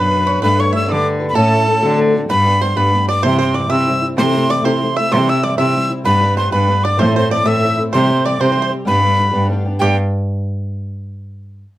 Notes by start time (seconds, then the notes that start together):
Already playing: F#2 B3 D4 F#4 B4 B5
0.26 D4 F#4 B4 C#5
0.41 G2 G3 A3 D4 G4 B4 B5
0.58 C#5 C#6
0.73 A3 D4 G4 E5 E6
0.77 B4
0.85 D3 B4 C#5 D5 E6
0.89 G3 A3 D4 G4 D6
1.20 D4 G4 B4
1.29 B5
1.35 A2 A3 C#4 E4 A4 A5
1.68 A3 C#4 E4 A4
1.82 D2 A2 D3 A3 C4 F#4
2.14 D3 A3 C4 F#4
2.29 G2 G3 B3 D4 G4 B4 B5
2.45 B3 D4 G4
2.60 G3 B3 D4 G4 C5 C6
2.76 G2 G3 B3 D4 G4 B4 B5
2.93 G3 B3 D4 G4
3.09 B3 D4 G4 D5 D6
3.23 C3 E3 G3 C4 E4 C5 C6
3.39 C4 E4 C5 C6
3.43 G3
3.54 E3 G3 C4 D5 D6
3.58 E4
3.70 C3 E3 G3 C4 E4 E5 E6
3.87 E3 G3 C4 E4
4.01 G3 C4 E4
4.16 C3 E3 A3 C4 E4 C5 C6
4.33 A3 C4 E4
4.48 E3 A3 C4 E4 D5 D6
4.64 C3 E3 A3 C4 E4 C5 C6
4.81 E3 A3 C4 E4
4.96 A3 C4 E4 E5 E6
5.12 C3 E3 G3 C4 E4 C5 C6
5.27 G3 C4 E4 E5 E6
5.42 E3 G3 C4 E4 D5 D6
5.58 C3 E3 G3 C4 E4 E5 E6
5.74 E3 G3 C4 E4
5.89 G3 C4 E4
6.04 G2 G3 B3 D4 G4 B4 B5
6.21 B3 D4 G4
6.36 G3 B3 D4 G4 C5 C6
6.51 G2 G3 B3 D4 G4 B4 B5
6.67 G3 B3 D4 G4
6.83 B3 D4 G4 D5 D6
6.96 A2 E3 A3 C4 E4 C5 C6
7.14 A3 C4 E4 C5 C6
7.29 E3 A3 C4 E4 D5 D6
7.45 A2 E3 A3 C4 E4 E5 E6
7.61 E3 A3 C4 E4
7.77 A3 C4 E4
7.92 C3 E3 G3 C4 G4 C5 C6
8.08 G3 C4 G4 C5
8.24 E3 G3 C4 G4 D5 D6
8.40 C3 E3 G3 C4 G4 C5 C6
8.52 E3 C5
8.57 G3 C4 G4
8.62 C5
8.70 G3 C4 G4
8.85 G2 G3 B3 D4 G4 B4 B5
9.02 B3 G4
9.17 G3 B3 D4 G4
9.31 G2 G3 B3 D4 G4
9.49 G3 B3 D4 G4
9.65 B3 D4 G4
9.79 G2 G3 B3 D4 G4 G5